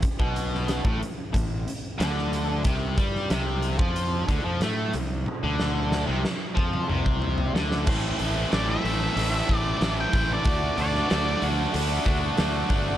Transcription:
0.02 kick, closed hi-hat
0.19 B1 B2, kick
0.36 closed hi-hat
0.55 snare
0.68 snare, closed hi-hat
0.84 A1 A2, kick
1.02 closed hi-hat
1.33 A1 A2, kick, closed hi-hat
1.68 closed hi-hat
1.98 D2 D3, snare, closed hi-hat
2.18 snare
2.33 closed hi-hat
2.64 C2 C3, kick, closed hi-hat
2.97 G2 G3, kick, closed hi-hat
3.15 snare
3.30 C2 C3, snare, closed hi-hat
3.62 closed hi-hat
3.79 F2 F3, kick
3.96 closed hi-hat
4.28 D2 D3, kick, closed hi-hat
4.44 F2 F3
4.61 A2 A3, snare, closed hi-hat
4.93 C2 C3, closed hi-hat
5.26 high tom
5.43 D2 D3
5.60 snare
5.92 snare
6.07 C2 C3
6.25 snare
6.55 F2 F3, kick
6.73 mid tom
6.89 C2 C3, mid tom
7.06 kick
7.22 floor tom
7.38 floor tom
7.55 D2 D3, snare
7.72 snare
7.87 A1 A2 E3 A3 C4 E4, kick, crash
8.18 A1 A2 E3 A3 C4 E4, open hi-hat
8.51 A1 A2 E3 A3 C4 E4 D5, snare, open hi-hat
8.70 E5
8.83 A1 A2 E3 A3 C4 E4, open hi-hat
9.16 A1 A2 E3 A3 C4 E4, open hi-hat
9.48 A1 A2 E3 A3 C4 E4, kick, open hi-hat
9.57 D5
9.80 A1 A2 E3 A3 C4 E4, snare, open hi-hat
10.00 G5
10.13 A1 A2 E3 A3 C4 E4, kick, open hi-hat
10.33 D5
10.44 D2 D3 A3 D4 F#4, kick, open hi-hat
10.76 D2 D3 A3 D4 F#4, open hi-hat
10.80 F#4 D5
10.95 snare
11.09 D2 D3 A3 D4 F#4, snare, open hi-hat
11.41 D2 D3 A3 D4 F#4, open hi-hat
11.74 D2 D3 A3 D4 F#4, open hi-hat
12.06 D2 D3 A3 D4 F#4, kick, open hi-hat
12.38 D2 D3 A3 D4 F#4, snare, open hi-hat
12.67 G1 D3 A3 F#4, kick, open hi-hat
12.71 D4 F#4

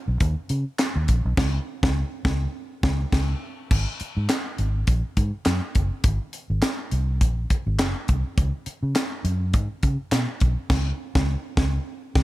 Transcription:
0.08 B1
0.20 D#2, kick, closed hi-hat
0.49 C#3, closed hi-hat
0.79 snare, clap, closed hi-hat
0.96 D#2
1.08 A#1, kick, closed hi-hat
1.25 B1
1.37 C#2, kick, snare, crash
1.83 C#2, kick, snare
2.25 C#2, kick, snare
2.83 C#2, kick, snare
3.12 C#2, kick, snare, crash
3.71 G#1, kick, crash
4.00 muted fingered electric bass stroke, closed hi-hat
4.17 G#2
4.29 snare, clap, closed hi-hat
4.58 G#1, closed hi-hat
4.87 A#1, kick, closed hi-hat
5.17 G#2, kick, closed hi-hat
5.45 F#2, snare, clap, closed hi-hat
5.75 F#1, kick, closed hi-hat
6.04 G#1, kick, closed hi-hat
6.33 closed hi-hat
6.50 G#1
6.62 snare, clap, closed hi-hat
6.91 C2, closed hi-hat
7.21 A#1, kick, closed hi-hat
7.50 kick, closed hi-hat
7.67 G#1
7.79 F#1, snare, clap, closed hi-hat
8.08 C2, kick, closed hi-hat
8.38 C#2, kick, closed hi-hat
8.66 muted fingered electric bass stroke, closed hi-hat
8.83 C#3
8.95 snare, clap, closed hi-hat
9.24 F#2, closed hi-hat
9.54 G#2, kick, closed hi-hat
9.83 C#3, kick, closed hi-hat
10.12 B2, snare, clap, closed hi-hat
10.40 B1, kick, closed hi-hat
10.70 C#2, kick, snare, crash
11.15 C#2, kick, snare
11.57 C#2, kick, snare
12.15 C#2, kick, snare

